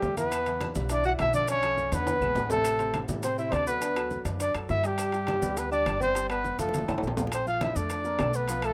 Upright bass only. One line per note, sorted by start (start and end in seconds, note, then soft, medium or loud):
0.03 0.70 E2 medium
0.76 1.16 B1 medium
1.20 1.87 B1 medium
1.92 2.19 E2 medium
2.20 2.34 B1 medium
2.35 3.03 A1 medium
3.09 3.49 A2 medium
3.52 4.20 D2 medium
4.25 4.52 F#2 medium
4.55 4.68 F#2 medium
4.69 5.37 G2 medium
5.42 5.83 D2 medium
5.86 6.54 G1 medium
6.59 6.86 F1 medium
6.89 7.02 G1 medium
7.03 7.71 A#1 medium
7.76 8.17 F2 medium
8.19 8.73 B1 medium